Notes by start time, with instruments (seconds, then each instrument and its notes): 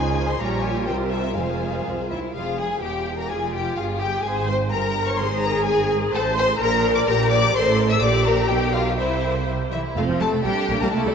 Already playing: double bass section C#2, cello section C#3, viola section F3 D#4, violin section G#4 C5 G#5
0.29 violin section C6
0.40 double bass section A#1, cello section A#2, viola section G3 F4, violin section G4 C#5 A#5
0.62 violin section G#5
0.87 double bass section C2, cello section C3, viola section G3, violin section A#4 C5 G5
1.10 violin section E5
1.36 double bass section F1, cello section F2, viola section G#3 F4, violin section G#4 C5 F5
1.86 double bass section C2, cello section F2
2.10 cello section D#2, violin section E4 E5
2.35 double bass section F1, cello section F2, violin section F4 F5, viola section G#4
2.58 violin section G#4 G#5
2.82 double bass section E1, cello section E2, violin section G4 G5, viola section G4
3.18 violin section A#4 A#5
3.29 double bass section F1, cello section F2, viola section F4, violin section G#4 G#5
3.53 violin section G4 G5
3.76 double bass section G1, cello section G2, violin section F4 F5, viola section G#4
4.00 violin section G4 G5
4.25 double bass section G#1, cello section G#2, violin section G#4 G#5, viola section C5
4.47 violin section C5 C6
4.71 double bass section G1, cello section G2, violin section A#4 A#5, viola section A#4
5.08 violin section C#5 C#6
5.17 double bass section G#1, cello section G#2, viola section G#4, violin section C5 C6
5.42 violin section A#4 A#5
5.66 violin section G#4 G#5
6.13 double bass section A1, cello section A2, violin section A4 A5, viola section C5
6.36 violin section C5 C6
6.60 double bass section A#1, cello section A#2, violin section A#4 A#5, viola section A#4
6.95 violin section D5 D6
7.07 double bass section A#1, cello section A#2, viola section G4, violin section A#4 A#5
7.31 violin section D5 D6
7.55 double bass section A1, cello section A2, viola section A4, violin section C5 C6
7.89 violin section E5 E6
8.02 double bass section A#1, cello section A#2, viola section G4, violin section D5 D6
8.25 violin section A#4 A#5
8.49 double bass section B1, cello section B2, violin section G4 G5
8.73 violin section F4 F5
8.97 double bass section C2, cello section C3, violin section E4 E5, viola section C5
9.70 cello section E3, violin section E4 E5
9.96 double bass section F1, cello section F3, viola section A3 C4, violin section F4 F5
10.10 double bass section F1, viola section F3
10.20 double bass section F1, viola section C3, cello section A3, violin section A4 A5
10.34 double bass section F1, viola section A3
10.44 double bass section A#1, cello section G3, viola section G3 D4, violin section G4 G5
10.70 double bass section A#1, viola section A#3
10.81 double bass section A#1, viola section G3, cello section A#3, violin section A#4 A#5
10.92 double bass section C2, cello section A3, viola section A#3 E4, violin section A4 A5
11.06 double bass section C2, viola section G3